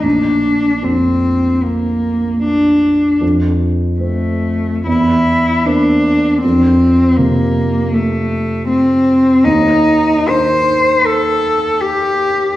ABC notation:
X:1
M:4/4
L:1/8
Q:1/4=77
K:Fmix
V:1 name="Cello"
D2 C2 B,2 D2 | z2 A,2 =E2 D2 | C2 B,2 A,2 C2 | E2 c2 A2 G2 |]
V:2 name="Grand piano" clef=bass
B,,,2 F,,6 | F,,2 C2 =E,,2 [B,C]2 | F,,2 C,6 | E,,2 E,6 |]